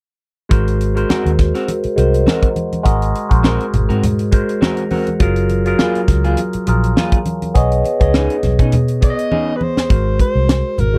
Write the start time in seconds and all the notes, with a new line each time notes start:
0.49 G#1 G#3 F#4 A#4 C5, kick, closed hi-hat, muted conga
0.68 closed hi-hat
0.81 closed hi-hat
0.95 G#3 F#4 A#4 C5, closed hi-hat
1.09 C4 F#4 A#4, muted fingered electric bass stroke, snare, high conga
1.25 D#2, closed hi-hat
1.39 kick, snare, closed hi-hat
1.55 C4 F#4 A#4, snare, closed hi-hat
1.68 closed hi-hat, muted conga
1.83 muted fingered electric bass stroke, closed hi-hat
1.96 C2 G#3 F#4 A#4 C5, closed hi-hat
2.14 closed hi-hat
2.27 C4 F#4 A#4, snare, high conga
2.43 kick, closed hi-hat
2.56 closed hi-hat, high conga
2.72 closed hi-hat, high conga
2.83 G#1 G#3 F#4 A#4 D#5, kick, closed hi-hat, muted conga
3.02 closed hi-hat
3.15 closed hi-hat
3.29 A#1 G#3 F#4 A#4 C5, kick, closed hi-hat
3.43 C4 F#4 A#4, snare, high conga
3.60 closed hi-hat
3.73 G#1, closed hi-hat, low conga
3.89 G#2 C4 F#4 A#4, closed hi-hat
4.03 closed hi-hat, muted conga, low conga
4.19 closed hi-hat
4.31 G#3 F#4 A#4 C5, kick, closed hi-hat
4.49 closed hi-hat
4.61 C4 F#4 A#4 A#5, snare, high conga
4.77 closed hi-hat
4.90 C4 F#4 A#4 F#5, open hi-hat, high conga
5.07 closed hi-hat, high conga
5.19 F#1 F#3 F4 G#4 A#4, kick, closed hi-hat, muted conga
5.36 closed hi-hat
5.49 closed hi-hat, muted conga
5.65 F#3 F4 G#4 A#4, closed hi-hat
5.79 A#3 F4 G#4, snare, high conga
5.95 closed hi-hat
6.08 C#2, kick, snare, closed hi-hat
6.24 A#3 F4 G#4, closed hi-hat
6.37 closed hi-hat, muted conga
6.53 muted fingered electric bass stroke, closed hi-hat
6.67 A#1 F#3 F4 G#4 A#4, closed hi-hat
6.84 closed hi-hat
6.97 A#3 F4 G#4, snare, high conga
7.12 kick, closed hi-hat
7.25 closed hi-hat, high conga
7.42 closed hi-hat, high conga
7.54 B1 B3 G#4 C#5 D#5, kick, closed hi-hat, muted conga
7.72 closed hi-hat
7.84 closed hi-hat, muted conga
8.00 C#2 B3 G#4 C#5 D#5, kick, closed hi-hat
8.14 C#4 D#4 G#4, snare, high conga
8.30 closed hi-hat
8.43 B1, snare, closed hi-hat, low conga
8.59 B2 C#4 D#4 G#4, kick, closed hi-hat
8.72 closed hi-hat, muted conga, low conga
8.88 closed hi-hat
9.01 B3 G#4 C#5 D5 D#5, kick, closed hi-hat
9.10 D#5
9.19 closed hi-hat
9.32 C#4 D#4 G#4, high conga
9.56 B4
9.61 C5, high conga
9.77 snare, high conga
9.89 G#1 G#3 F#4 A#4 C5, kick, closed hi-hat, muted conga
10.20 C5, kick, closed hi-hat, muted conga
10.35 C2
10.49 snare, closed hi-hat, high conga
10.78 G#1 A#4, closed hi-hat, low conga
10.94 G#2 G#3 F#4